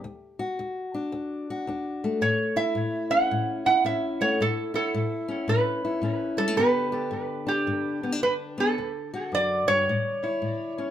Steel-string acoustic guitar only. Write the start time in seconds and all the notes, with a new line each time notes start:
0.04 D2
0.39 F#4
0.59 D2
0.94 D4
1.12 D2
1.50 F#4
1.67 D2 D4
2.04 A3
2.21 A2
2.56 E4
2.75 A2
3.10 C#4
3.31 A2
3.66 E4
3.84 A2 C#4
4.21 A3
4.40 A2
4.74 E4
4.94 A2
5.28 C#4
5.48 A2
5.85 E4
6.02 A2 C#4
6.37 G3
6.48 A3
6.57 G2 D3 B3 D4 G4
6.92 G4
7.11 G2
7.47 D4
7.67 G2
8.03 B3
8.12 D4
8.22 G2 D4
8.58 B3
8.78 D2
9.14 F#4
9.32 F#2
9.67 G2
9.89 A2
10.23 E4
10.42 A2
10.78 C#4